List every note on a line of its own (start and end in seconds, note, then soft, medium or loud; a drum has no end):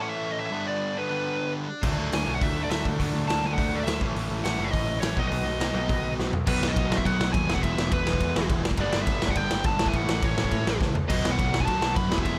0.00 0.50 A2 medium
0.00 0.51 A2 medium
0.00 0.51 E3 medium
0.00 0.51 A3 medium
0.00 0.52 A3 medium
0.00 0.51 C#4 medium
0.00 0.50 E4 medium
0.00 0.09 F#5 medium
0.09 0.31 E5 loud
0.32 0.38 D#5 medium
0.40 0.45 E5 medium
0.46 0.67 E5 medium
0.51 1.09 G2 medium
0.51 1.09 D3 medium
0.51 1.09 G3 medium
0.51 1.08 B3 medium
0.51 1.08 D4 loud
0.68 0.97 D5 medium
0.94 1.67 G2 medium
0.94 1.68 D3 medium
0.94 1.69 G3 medium
0.94 1.51 B4 medium
1.09 1.68 G2 medium
1.09 1.68 D3 medium
1.09 1.68 G3 medium
1.09 1.67 B3 medium
1.09 1.85 D4 medium
1.83 1.95 D2 medium
1.83 2.39 D3 medium
1.83 2.40 F#3 loud
1.83 2.42 A3 medium
1.83 2.42 D4 medium
1.83 kick loud
1.83 crash medium
1.98 2.10 D2 medium
2.12 2.25 D2 medium
2.12 2.34 G#5 loud
2.12 snare loud
2.12 open hi-hat medium
2.26 2.39 B1 medium
2.26 2.98 D3 medium
2.26 3.00 A3 medium
2.26 2.98 D4 medium
2.35 2.41 F#5 medium
2.40 2.66 D2 medium
2.40 2.97 D3 medium
2.40 2.98 F#3 medium
2.40 3.00 A3 medium
2.40 3.00 D4 medium
2.40 2.63 E5 medium
2.40 kick loud
2.40 open hi-hat medium
2.64 2.70 D5 medium
2.70 2.82 D2 medium
2.70 2.84 E5 medium
2.70 snare loud
2.70 open hi-hat medium
2.85 2.97 D2 medium
2.85 kick medium
2.99 3.12 D2 medium
2.99 3.56 D3 loud
2.99 3.57 F#3 medium
2.99 3.57 A3 loud
2.99 3.58 D4 loud
2.99 kick medium
2.99 open hi-hat medium
3.14 3.26 D2 medium
3.28 3.41 D2 medium
3.28 3.46 A5 loud
3.28 snare loud
3.28 open hi-hat medium
3.43 3.56 D2 medium
3.43 4.00 D3 medium
3.43 4.01 A3 medium
3.43 4.00 D4 medium
3.43 3.53 G#5 loud
3.54 4.00 D3 medium
3.54 3.78 F#5 loud
3.58 3.82 D2 medium
3.58 4.00 F#3 medium
3.58 4.00 A3 medium
3.58 4.01 D4 medium
3.58 kick loud
3.58 open hi-hat medium
3.75 3.83 D5 medium
3.83 3.99 D2 medium
3.83 4.00 E5 medium
3.83 open hi-hat medium
3.88 snare loud
4.00 4.13 A1 medium
4.00 4.58 A2 medium
4.00 4.58 E3 medium
4.00 4.59 A3 medium
4.00 4.58 C#4 loud
4.00 4.57 E4 loud
4.00 kick loud
4.15 4.28 A1 medium
4.15 open hi-hat medium
4.30 4.42 A1 medium
4.44 4.56 A1 medium
4.44 5.15 A2 medium
4.44 5.17 E3 medium
4.44 5.18 A3 medium
4.44 4.67 F#5 loud
4.44 snare loud
4.44 open hi-hat medium
4.58 4.71 F#1 medium
4.58 5.16 A2 medium
4.58 5.17 E3 medium
4.58 5.17 A3 medium
4.58 5.16 C#4 medium
4.58 5.16 E4 medium
4.64 4.71 E5 loud
4.71 4.98 A1 medium
4.71 5.00 D#5 loud
4.71 kick loud
4.71 open hi-hat medium
5.00 5.15 A1 medium
5.00 5.19 C#5 medium
5.00 snare loud
5.00 open hi-hat medium
5.16 5.29 B1 medium
5.16 5.74 B2 medium
5.16 5.74 D#3 medium
5.16 5.75 F#3 medium
5.16 5.73 B3 loud
5.16 5.73 D#4 loud
5.16 5.26 D#5 medium
5.16 kick loud
5.27 5.44 B1 medium
5.27 6.12 D#5 medium
5.32 open hi-hat medium
5.45 5.58 B1 medium
5.59 5.72 B1 medium
5.59 6.31 B2 medium
5.59 6.32 F#3 medium
5.59 6.33 B3 medium
5.59 snare loud
5.59 open hi-hat medium
5.74 5.86 B1 medium
5.74 6.33 B2 medium
5.74 6.33 D#3 medium
5.74 6.32 F#3 medium
5.74 6.32 B3 medium
5.74 6.32 D#4 medium
5.89 6.14 B1 medium
5.89 kick loud
5.89 open hi-hat medium
6.19 6.31 B1 medium
6.19 snare medium
6.32 6.45 B1 medium
6.32 floor tom medium
6.47 6.59 B1 loud
6.47 7.03 B2 medium
6.47 7.04 D#3 loud
6.47 7.05 F#3 medium
6.47 7.06 B3 loud
6.47 7.05 D#4 loud
6.47 6.70 B4 medium
6.47 kick loud
6.47 crash loud
6.62 6.73 B1 medium
6.62 snare loud
6.68 6.98 D#5 medium
6.76 6.88 B1 loud
6.76 kick loud
6.76 ride loud
6.90 7.02 B1 loud
6.90 snare loud
6.97 7.05 E5 loud
6.97 kick medium
7.05 7.17 B1 loud
7.05 7.47 B2 medium
7.05 7.47 D#3 medium
7.05 7.48 F#3 medium
7.05 7.49 B3 medium
7.05 7.49 D#4 medium
7.05 7.32 F#5 loud
7.05 kick loud
7.05 ride medium
7.20 7.31 B1 medium
7.20 snare loud
7.33 7.45 D#2 loud
7.33 7.54 G#5 loud
7.33 kick loud
7.33 ride medium
7.47 7.60 E1 loud
7.47 8.62 E2 medium
7.47 8.63 B2 loud
7.47 8.05 E3 medium
7.47 8.06 G#3 loud
7.47 8.05 B3 loud
7.47 8.04 E4 loud
7.47 snare loud
7.55 7.62 F#5 loud
7.55 kick medium
7.62 7.74 E1 medium
7.62 7.92 E5 loud
7.62 kick loud
7.62 ride medium
7.77 7.88 E1 medium
7.77 snare loud
7.92 8.03 E1 loud
7.92 8.46 B4 medium
7.92 kick loud
7.92 ride medium
8.05 8.17 E1 loud
8.05 8.64 E3 medium
8.05 8.64 G#3 medium
8.05 8.63 B3 medium
8.05 8.63 E4 loud
8.05 snare loud
8.13 kick loud
8.20 8.32 E2 loud
8.20 kick loud
8.20 ride medium
8.36 8.47 E1 loud
8.36 snare loud
8.50 8.72 E1 loud
8.50 kick loud
8.50 ride medium
8.65 snare loud
8.71 kick loud
8.77 8.89 G1 loud
8.77 9.34 G2 medium
8.77 9.35 D3 loud
8.77 9.36 G3 loud
8.77 9.36 B3 loud
8.77 9.36 D4 loud
8.77 9.01 D5 loud
8.77 kick loud
8.77 ride medium
8.93 9.04 G1 medium
8.93 snare loud
9.02 9.31 E5 loud
9.07 9.18 G1 loud
9.07 kick loud
9.07 ride loud
9.22 9.33 G1 loud
9.22 snare loud
9.29 9.36 F#5 loud
9.29 kick medium
9.35 9.47 G1 loud
9.35 9.78 G2 medium
9.35 9.79 D3 medium
9.35 9.79 G3 medium
9.35 9.79 B3 medium
9.35 9.80 D4 loud
9.35 9.66 G5 loud
9.35 kick loud
9.35 ride medium
9.51 9.62 G1 loud
9.51 snare loud
9.64 9.76 G1 loud
9.64 9.88 A5 loud
9.64 kick loud
9.64 ride medium
9.79 9.91 A1 loud
9.79 10.36 A2 medium
9.79 10.36 E3 loud
9.79 10.37 A3 loud
9.79 10.37 C#4 loud
9.79 10.36 E4 loud
9.79 snare loud
9.86 9.96 G#5 loud
9.86 kick medium
9.93 10.05 A1 loud
9.93 10.25 F#5 loud
9.93 kick loud
9.93 ride medium
10.09 10.20 A1 medium
10.09 snare loud
10.22 10.34 A1 medium
10.22 10.77 C#5 medium
10.22 kick loud
10.22 ride medium
10.37 10.48 A1 loud
10.37 10.96 A2 medium
10.37 10.95 E3 medium
10.37 10.95 A3 medium
10.37 10.95 C#4 medium
10.37 10.94 E4 medium
10.37 snare loud
10.44 kick medium
10.51 10.63 A2 loud
10.51 kick medium
10.51 ride medium
10.66 10.78 A1 loud
10.66 snare loud
10.81 11.03 C#2 medium
10.81 kick loud
10.81 snare medium
10.95 floor tom loud
11.09 11.21 B1 medium
11.09 11.66 B2 medium
11.09 11.67 D#3 loud
11.09 11.67 F#3 loud
11.09 11.69 B3 loud
11.09 11.67 F#4 loud
11.09 11.29 D#5 loud
11.09 kick loud
11.09 ride medium
11.09 crash loud
11.24 11.36 B1 medium
11.24 snare loud
11.32 11.61 F#5 loud
11.39 11.50 B1 loud
11.39 kick loud
11.39 ride medium
11.54 11.65 B1 loud
11.54 snare loud
11.60 11.65 G#5 loud
11.60 kick medium
11.66 11.79 B1 loud
11.66 12.10 B2 medium
11.66 12.10 D#3 medium
11.66 12.11 F#3 medium
11.66 12.12 B3 medium
11.66 11.96 A5 loud
11.66 kick loud
11.66 ride medium
11.70 12.11 F#4 loud
11.82 11.93 B1 loud
11.82 snare loud
11.96 12.08 F#2 loud
11.96 12.16 B5 loud
11.96 kick loud
11.96 ride medium
12.10 12.22 E1 loud
12.10 12.39 E2 medium
12.10 12.39 B2 loud
12.10 12.39 E3 loud
12.10 12.39 G#3 medium
12.10 12.39 B3 loud
12.10 12.39 E4 loud
12.10 snare loud
12.18 kick loud
12.23 12.37 E1 loud
12.23 12.39 E5 loud
12.23 kick loud
12.23 ride medium